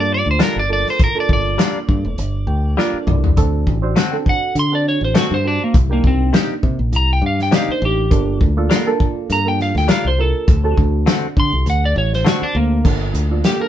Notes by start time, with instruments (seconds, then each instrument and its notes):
Already playing: fingered electric bass G2, reed electric piano A#3 D4 F4 A4
0.00 electric slide guitar D5
0.14 electric slide guitar D5
0.26 fingered electric bass D2
0.31 electric slide guitar C5
0.39 clean electric guitar G3 D4 F4 A#4, snare, closed hi-hat
0.43 electric slide guitar A#4
0.56 fingered electric bass G1, electric slide guitar D5
0.69 reed electric piano A#3 D4 F4 A4
0.73 electric slide guitar D5
0.87 electric slide guitar C5, snare
0.99 kick, closed hi-hat
1.04 electric slide guitar A#4
1.15 reed electric piano A#3 D4 F4 A4
1.20 electric slide guitar D5
1.29 fingered electric bass G1, kick
1.33 electric slide guitar D5
1.58 clean electric guitar G3 D4 F4 A#4, snare, closed hi-hat
1.89 fingered electric bass G2, kick
2.05 fingered electric bass F1
2.18 fingered electric bass G1, closed hi-hat
2.47 fingered electric bass D2, reed electric piano G5
2.77 clean electric guitar G3 D4 F4 A#4, reed electric piano A#3 D4 F4 A4 F5, snare
2.93 muted fingered electric bass stroke
3.07 fingered electric bass C2, reed electric piano D5, mid tom
3.24 floor tom
3.37 fingered electric bass D2, reed electric piano C4 D4 F#4 A4, kick, closed hi-hat
3.67 fingered electric bass A1, kick
3.82 reed electric piano C4 D4 F#4 C5
3.96 clean electric guitar D3 A3 C4 F#4, snare, closed hi-hat
4.12 reed electric piano C4 D4 F#4 A4
4.26 electric slide guitar F#5, kick
4.55 fingered electric bass D3, closed hi-hat
4.59 electric slide guitar C6
4.72 reed electric piano C4 D4 F#4 A4, electric slide guitar D5
4.89 electric slide guitar C#5
5.01 fingered electric bass A1, electric slide guitar C5
5.14 clean electric guitar D3 A3 C4 F#4, electric slide guitar F#4, snare, closed hi-hat
5.31 fingered electric bass G2, electric slide guitar C5
5.44 reed electric piano C4 D4 F#4 C5, electric slide guitar D4
5.64 electric slide guitar A#3
5.74 fingered electric bass C2, kick, closed hi-hat
5.90 reed electric piano A#3 D4 D#4 G4, electric slide guitar A#3
6.04 fingered electric bass C2, electric slide guitar C4, kick
6.33 clean electric guitar C3 A#3 D#4 G4, snare, closed hi-hat
6.63 fingered electric bass C3, kick
6.79 fingered electric bass A#1
6.92 fingered electric bass C2, electric slide guitar A#5, closed hi-hat
7.13 electric slide guitar G5
7.22 fingered electric bass G2
7.26 electric slide guitar F5
7.39 electric slide guitar G5, snare
7.51 clean electric guitar C3 A#3 D#4 G4, reed electric piano A#3 D4 D#4 G4, snare, closed hi-hat
7.56 electric slide guitar F5
7.68 electric slide guitar C5, muted fingered electric bass stroke
7.82 fingered electric bass A1, electric slide guitar G4
8.10 fingered electric bass G1, reed electric piano A#3 D4 F4 A4, kick, closed hi-hat
8.41 fingered electric bass D2, kick
8.57 reed electric piano A#3 D4 F4 A4
8.70 clean electric guitar G3 D4 F4 A#4, snare, closed hi-hat
8.86 reed electric piano A#3 D4 F4 A4
9.00 kick
9.30 fingered electric bass G2, electric slide guitar A#5, closed hi-hat
9.45 reed electric piano A#3 D4 F4 A4, electric slide guitar G5
9.60 electric slide guitar F5, snare
9.75 fingered electric bass D2, electric slide guitar G5, snare
9.88 clean electric guitar G3 D4 F4 A#4, electric slide guitar F5, snare, closed hi-hat
10.05 fingered electric bass C2, electric slide guitar C5
10.18 reed electric piano A#3 D4 F4 A#4, electric slide guitar A4
10.48 fingered electric bass D2, kick, closed hi-hat
10.64 reed electric piano C4 D4 F#4 A4
10.77 fingered electric bass D2, kick
11.06 clean electric guitar D3 A3 C4 F#4, snare, closed hi-hat
11.37 fingered electric bass D3, electric slide guitar C6, kick
11.53 fingered electric bass C2
11.66 fingered electric bass D2, electric slide guitar F#5, closed hi-hat
11.85 electric slide guitar D5
11.96 fingered electric bass A1, electric slide guitar C#5
12.13 electric slide guitar C5, snare
12.25 clean electric guitar D3 A3 C4 F#4, reed electric piano C4 D4 F#4 C5, electric slide guitar F#4, snare, closed hi-hat
12.42 electric slide guitar D4, muted fingered electric bass stroke
12.55 fingered electric bass D2, electric slide guitar A#3
12.84 fingered electric bass G1, reed electric piano A#3 D4 F4 A4, kick, crash
13.14 fingered electric bass D2, closed hi-hat
13.30 reed electric piano A#3 D4 F4 A4
13.44 electric slide guitar G4, snare, closed hi-hat
13.59 reed electric piano A#3 D4 F4 A4, electric slide guitar A#4